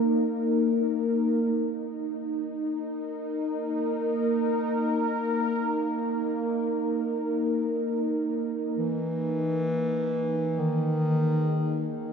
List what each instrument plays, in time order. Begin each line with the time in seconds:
Already playing: analog synth pad A#3 D#4 A#4
1.50 analog synth pad D#4
2.69 analog synth pad A#4
3.42 analog synth pad A#3
8.78 bass clarinet E3
10.59 bass clarinet D#3
11.04 analog synth pad G#4